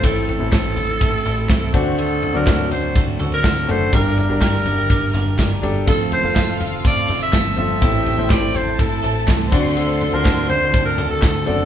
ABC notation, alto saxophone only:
X:1
M:4/4
L:1/16
Q:1/4=123
K:Dm
V:1 name="Alto saxophone"
A2 A12 ^F2 | A3 B3 c3 z2 B3 c2 | B2 B12 z2 | A2 c4 z2 d3 e3 e2- |
e4 d2 c2 A4 z2 ^F2 | A3 B3 c3 B2 A3 A2 |]